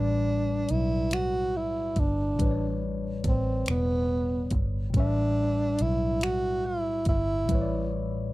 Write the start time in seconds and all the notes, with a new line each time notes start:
Already playing: A1 A2 G3 D4 B4 D5
0.69 B1 E4, closed hi-hat
1.11 F#4, finger snap, closed hi-hat
1.57 E4
1.96 G1 D4, kick, closed hi-hat
2.36 A2 G3, kick, closed hi-hat
2.40 A1 B4
2.45 C#5
2.51 D5
3.24 A1, kick, closed hi-hat
3.28 C4
3.66 E1, finger snap, closed hi-hat
3.71 B3
4.51 G1, kick, closed hi-hat
4.90 A2 G3, kick, closed hi-hat
4.95 A1 D4 B4
5.00 E5
5.79 B1 E4, closed hi-hat
6.21 F#4, finger snap, closed hi-hat
6.66 E4
7.05 G1 E4, kick, closed hi-hat
7.45 A2 G3, kick, closed hi-hat
7.50 A1 B4
7.55 C#5
7.61 D5